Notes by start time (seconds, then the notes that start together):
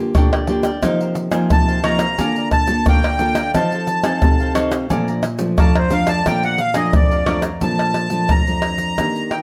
Already playing: D3 A#3 F4 G4
0.14 D3 D4 A#4 D5 G5, pandeiro, tamborim, high agogo, shaker, surdo
0.32 A#4 D5 G5, pandeiro, tamborim, shaker
0.47 A#3 D4 F4 G4 A#4 D5 G5, pandeiro
0.63 A#4 D5 G5, pandeiro, tamborim, shaker
0.82 C3 F3 A#3 D#4 A#4 C5 F5, pandeiro, tamborim, shaker, surdo
1.01 A#4 C5 F5, pandeiro, shaker
1.15 muted cavaquinho stroke, pandeiro, shaker
1.31 F3 A#3 D#4 A#4 C5 F5, pandeiro, tamborim, low agogo, shaker
1.50 C3 A5, pandeiro, tamborim, shaker, surdo
1.68 A#4 C5 F5, pandeiro, shaker
1.84 F3 A#3 D#4 A#4 C5 F5 A#5, pandeiro, tamborim, high agogo
1.99 A#4 C5 F5, pandeiro, tamborim, shaker
2.19 D3 A#3 F4 A4 D5 F5 A#5, pandeiro, low agogo, shaker, surdo
2.36 D5 F5 A#5, pandeiro, shaker
2.51 A5, muted cavaquinho stroke, pandeiro, tamborim, shaker, surdo
2.67 A#3 F4 A4, pandeiro, shaker
2.86 D3 A4 D5 F5 G5 A#5, pandeiro, tamborim, high agogo, shaker, surdo
3.04 D5 F5 A#5, pandeiro, tamborim, shaker
3.19 A#3 F4 A4 D5 F5 A#5, pandeiro, shaker
3.35 D5 F5 A#5, pandeiro, tamborim, shaker
3.54 F3 C4 D#4 A4 C5 F5 A5, pandeiro, tamborim, shaker, surdo
3.72 A4 C5 F5, pandeiro, shaker
3.87 muted cavaquinho stroke, pandeiro, shaker
4.03 C4 D#4 A4 C5 F5, pandeiro, tamborim, low agogo, shaker
4.22 C3, pandeiro, tamborim, shaker, surdo
4.40 A4 C5 F5, pandeiro, shaker
4.55 C4 D#4 A4 C5 F5, pandeiro, tamborim, high agogo, shaker
4.72 C5 F5, pandeiro, tamborim, shaker
4.90 A#2 F3 A3 D4 A4 D5 F5 A#5, pandeiro, low agogo, shaker, surdo
5.08 D5 F5 A#5, pandeiro, shaker
5.23 muted cavaquinho stroke, pandeiro, tamborim, shaker
5.39 F3 A3 D4, pandeiro, shaker
5.58 F2 A4 D5 F5 A5 A#5, pandeiro, tamborim, high agogo, shaker, surdo
5.76 C5 D5 F5 A#5, pandeiro, tamborim, shaker
5.90 F3 A3 D4 A4 D5 F5 A#5, pandeiro, shaker
6.07 D5 F5 A5 A#5, pandeiro, tamborim, shaker
6.25 A#2 F3 A3 D4 A4 D5 F5 G5 A#5, pandeiro, tamborim, shaker, surdo
6.43 D5 F5 F#5 A#5, pandeiro, shaker
6.58 F5, muted cavaquinho stroke, pandeiro, shaker
6.74 F3 A3 D4 D5 D#5 F5 A#5, pandeiro, tamborim, low agogo, shaker
6.93 F2 D5, pandeiro, tamborim, shaker, surdo
7.11 D5 F5 A#5, pandeiro, shaker
7.26 F3 A3 D4 A4 D5 F5 A#5, pandeiro, tamborim, high agogo
7.42 D5 F5 A#5, pandeiro, tamborim, shaker
7.61 A#2 F3 A3 D4 A5, pandeiro, shaker, surdo
7.79 pandeiro, tamborim, shaker
7.94 pandeiro, tamborim
8.10 F3 A3 D4, pandeiro, shaker
8.29 F2 A#5, pandeiro, tamborim, shaker, surdo
8.47 F3 A3 D4, pandeiro, shaker
8.62 pandeiro, tamborim
8.78 pandeiro, shaker
8.98 D#3 A#3 D4 G4, pandeiro, tamborim, shaker, surdo
9.16 pandeiro, shaker
9.31 G5, pandeiro, tamborim